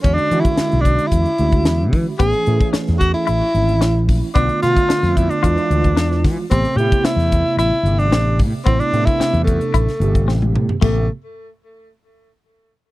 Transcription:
<<
  \new Staff \with { instrumentName = "Tenor saxophone" } { \time 4/4 \key a \minor \tempo 4 = 111 cis'16 d'8 e'8. d'8 e'4. r8 | gis'4 r8 fis'16 e'4.~ e'16 r8 | d'8 f'4 e'16 d'4.~ d'16 r8 | c'8 g'8 e'4 e'8. d'8. r8 |
c'16 d'8 e'8. a2 r8 | a8 r2. r8 | }
  \new Staff \with { instrumentName = "Clean electric guitar" } { \time 4/4 \key a \minor r1 | b8 r8 cis'8 r8 e'8 r8 cis'8 r8 | b8 r8 d'8 r8 f'8 r8 d'8 r8 | b8 r8 c'8 r8 e'8 r8 c'8 r8 |
b8 r8 c'8 r8 e'8 r8 c'8 r8 | a8 r2. r8 | }
  \new Staff \with { instrumentName = "Tine electric piano" } { \time 4/4 \key a \minor <d gis cis' fis'>8 <d gis cis' fis'>2 <d gis cis' fis'>4. | <e a cis' gis'>8 <e a cis' gis'>2 <e a cis' e'>4. | <d a b f'>8 <d a b f'>4. <e gis d' f'>8 <e gis d' f'>4. | <c a b g'>8 <c a b e'>2 <c a b g'>4. |
<c a b e'>8 <c a b d'>2 <c a b g'>4. | <c a b g'>8 r2. r8 | }
  \new Staff \with { instrumentName = "Fretless electric bass" } { \clef bass \time 4/4 \key a \minor e,16 r16 e16 r8 b,,8 r16 e,16 r16 d,8 e,8 e16 r16 | a,,16 r16 a,16 r8 e,8 r16 a,,16 r16 gis,,8 a,,8 bes,,16 r16 | b,,16 r16 b,16 r8 f,8 r16 e,16 r16 d,8 e,8 e16 r16 | a,,16 r16 a,16 r8 e,8 r16 a,,16 r16 g,,8 a,,8 a,16 r16 |
a,,16 r16 a,16 r8 e,8 r16 a,,16 r16 g,,8 a,,8 a,16 r16 | a,,8 r2. r8 | }
  \new DrumStaff \with { instrumentName = "Drums" } \drummode { \time 4/4 <hh bd>16 hh16 hh16 <hh bd>16 <hh sn>16 hh16 <hh bd>16 hh16 <hh bd>16 hh16 hh16 <hh bd>16 <hh sn>8 <hho bd>8 | <hh bd>16 hh16 hh16 <hh bd>16 <hh sn>16 <hh sn>16 <hh bd>8 hh8 hh16 hh16 <hh sn>8 <hho bd>8 | <hh bd>16 hh16 <hh sn>16 <hh bd>16 <hh sn>16 <hh sn>16 <hh bd>16 hh16 <hh bd>16 hh16 hh16 <hh bd>16 <hh sn>16 sn16 <hho bd sn>8 | <hh bd>16 hh16 hh16 <hh bd>16 <hh sn>16 <hh sn>16 <hh bd>8 hh8 hh16 hh16 <hh sn>8 <hho bd>8 |
<hh bd>16 hh16 hh16 <hh bd>16 <hh sn>16 hh16 <hh bd>16 hh16 <hh bd>16 <hh sn>16 hh16 <hh bd>16 sn16 tommh16 toml16 tomfh16 | <cymc bd>4 r4 r4 r4 | }
>>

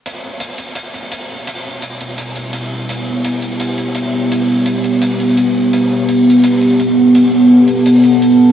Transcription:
<<
  \new Staff \with { instrumentName = "Ambient pad" } { \time 4/4 \key e \minor \tempo 4 = 169 << { e''1~ | e''1~ | e''1~ | e''1 |
a''1~ | a''1 | } \\ { <b g'>1~ | <b g'>1~ | <b g'>1~ | <b g'>1~ |
<b g'>1~ | <b g'>1 | } >> }
  \new DrumStaff \with { instrumentName = "Drums" } \drummode { \time 4/4 hh4 hh8 hh8 hh8 hh8 hh4 | hh4 hh8 hh8 hh8 hh8 hh4 | hh4 hh8 hh8 hh8 hh8 hh4 | hh4 hh8 hh8 hh8 hh8 hh4 |
hh4 hh8 r32 hh16. hh8 hh8 hh4 | hh4 r8 hh8 hh8 hh8 hh4 | }
>>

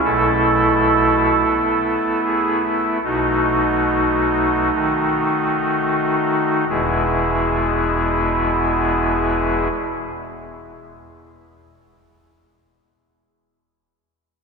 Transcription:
<<
  \new Staff \with { instrumentName = "Pipe organ" } { \time 4/4 \key e \major \tempo 4 = 31 << { a'4. gis'16 e'16 fis'4 fis'4 | <e, b, gis b e' gis'>1 | } \\ { <a e'>2 <a dis'>2 | r1 | } >> }
  \new Staff \with { instrumentName = "Pipe organ" } { \clef bass \time 4/4 \key e \major <b,, b,>4 b4 <b,, b,>4 dis4 | e,,1 | }
>>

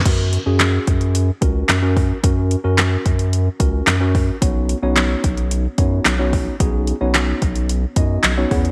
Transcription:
<<
  \new Staff \with { instrumentName = "Tine electric piano" } { \time 4/4 \key fis \mixolydian \tempo 4 = 110 <cis' fis' ais'>8. <cis' fis' gis'>4. r16 <cis' fis' ais'>8. <cis' fis' ais'>8. | <cis' fis' ais'>8. <cis' fis' ais'>4. r16 <cis' fis' ais'>8. <cis' fis' ais'>8. | <b cis' dis' fis' cis''>8. <b cis' dis' fis' cis''>4. r16 <b cis' dis' fis' cis''>8. <b cis' dis' fis' cis''>8. | <b cis' dis' fis' gis'>8. <b cis' dis' fis' cis''>4. r16 <b cis' dis' fis' dis''>8. <b cis' dis' fis' cis''>16 <b cis' e' gis' cis''>8 | }
  \new Staff \with { instrumentName = "Sub bass" } { \clef bass \time 4/4 \key fis \mixolydian fis,8. fis,8. fis,4 cis,8 fis,4 | fis,8. fis,8. fis,4 cis,8 fis,4 | b,,8. b,,8. b,,4 fis,8 b,,4 | b,,8. b,,8. b,,4 fis,8 b,,8 e,8 | }
  \new DrumStaff \with { instrumentName = "Drums" } \drummode { \time 4/4 <cymc hh bd>8 hh8 <hc hh sn>8 <hh bd>16 hh16 hh8 <hh bd>8 <hc hh sn>8 <hho bd>8 | <hh bd>8 hh8 <hc hh sn>8 <hh bd>16 hh16 hh8 <hh bd>8 <hc hh sn>8 <hho bd>8 | <hh bd>8 hh8 <hc hh sn>8 <hh bd>16 hh16 hh8 <hh bd>8 <hc hh sn>8 <hho bd>8 | <hh bd>8 hh8 <hc hh sn>8 <hh bd>16 hh16 hh8 <hh bd>8 <hc hh sn>8 <hho bd>16 hh16 | }
>>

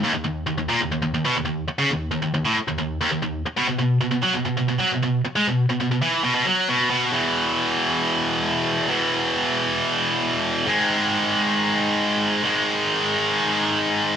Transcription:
\new Staff \with { instrumentName = "Distorted electric guitar" } { \clef bass \time 4/4 \key fes \lydian \tempo 4 = 135 ees,16 ees,16 ees,8 ees,16 ees,16 bes,16 ees,16 ees,16 ees,16 ees,16 ces16 ees,16 ees,8 r16 | des16 ees,8 ees,16 ees,16 ees,16 a,16 r16 ees,16 ees,8 ees,16 ees,16 ees,8 r16 | b,16 b,16 b,8 b,16 b,16 fis16 b,16 b,16 b,16 b,16 fis16 b,16 b,8 r16 | aes16 b,8 b,16 b,16 b,16 fes8 b,16 b,16 fis8 b,8 b,8 |
<e, b, e>1 | <e, b, e>1 | <aes, ees aes>1 | <aes, ees aes>1 | }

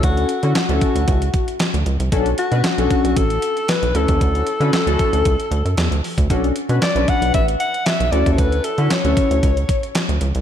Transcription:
<<
  \new Staff \with { instrumentName = "Alto saxophone" } { \time 4/4 \key d \major \tempo 4 = 115 fis'4 fis'2 r4 | r8 fis'4. a'4 b'8 a'8~ | a'2.~ a'8 r8 | r4 d''8 fis''8 e''8 fis''8 e''8 d''16. cis''32 |
b'8 a'8 cis''2 r4 | }
  \new Staff \with { instrumentName = "Analog polysynth" } { \time 4/4 \key d \major <cis' e' fis' a'>8 r16 <cis' e' fis' a'>16 r16 <cis' e' fis' a'>8. r2 | <cis' d' fis' a'>16 r8 <cis' d' fis' b'>16 r16 <cis' d' fis' a'>8. r4. <cis' e' fis' a'>8~ | <cis' e' fis' a'>8 r16 <cis' e' fis' b'>16 r16 <cis' e' fis' a'>8. r2 | <cis' d' fis' a'>16 r8 <cis' d' fis' b'>16 r16 <cis' d' fis' b'>8. r4. <cis' e' fis' a'>8~ |
<cis' e' fis' a'>8 r16 <cis' e' fis' b'>16 r16 <cis' e' fis' a'>8. r2 | }
  \new Staff \with { instrumentName = "Analog synth bass" } { \clef bass \time 4/4 \key d \major d,8 r16 d16 r16 d,16 r16 d,16 cis,8 r8. d,16 cis,16 c,16 | b,,8 r16 b,16 r16 b,,16 r16 b,,16 a,,8 r8. b,,16 d,16 dis,16 | d,8 r16 d16 r16 d,16 r16 d,16 cis,16 r16 d,16 fis,16 e,16 d,16 r16 d,16 | b,,8 r16 b,16 r16 b,,16 r16 b,,16 a,,8 r8. b,,16 d,16 dis,16 |
d,8 r16 d16 r16 d,16 r16 d,16 cis,8 r8. d,16 cis,16 c,16 | }
  \new DrumStaff \with { instrumentName = "Drums" } \drummode { \time 4/4 <hh bd>16 hh16 hh16 hh16 <hc hh sn>16 hh16 <hh bd>16 hh16 <hh bd>16 hh16 <hh bd>16 hh16 <hc hh sn>16 hh16 hh16 hh16 | <hh bd>16 hh16 hh16 hh16 <hc hh sn>16 hh16 <hh bd>16 hh16 <hh bd>16 hh16 hh16 hh16 <hc hh sn>16 hh16 hh16 <hh bd>16 | <hh bd>16 hh16 hh16 hh16 <hc hh sn>16 hh16 <hh bd>16 hh16 <hh bd>16 hh16 hh16 hh16 <hc hh sn>16 hh16 hho16 <hh bd>16 | <hh bd>16 hh16 hh16 hh16 <hc hh sn>16 hh16 <hh bd>16 hh16 <hh bd>16 hh16 hh16 hh16 <hc hh sn>16 hh16 hh16 <hh bd>16 |
<hh bd>16 hh16 hh16 hh16 <hc hh sn>16 hh16 <hh bd>16 hh16 <hh bd>16 hh16 <hh bd>16 hh16 <hc hh sn>16 hh16 hh16 hh16 | }
>>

